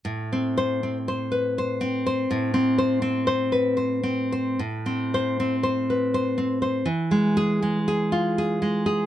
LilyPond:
\new Staff \with { instrumentName = "Nylon-string guitar" } { \time 3/4 \key a \minor \tempo 4 = 80 << { \tuplet 3/2 { r4 c''8 } r2 | r2. | \tuplet 3/2 { r4 c''8 } r2 | \tuplet 3/2 { r4 gis'8 } r2 | } \\ { \tuplet 3/2 { a,8 c'4 c'8 c''8 b'8 c''8 c'8 c''8 } | \tuplet 3/2 { a,8 c'8 c''8 c'8 c''8 b'8 c''8 c'8 c''8 } | \tuplet 3/2 { a,8 c'4 c'8 c''8 b'8 c''8 c'8 c''8 } | \tuplet 3/2 { e8 gis4 gis8 gis'8 f'8 gis'8 gis8 gis'8 } | } >> }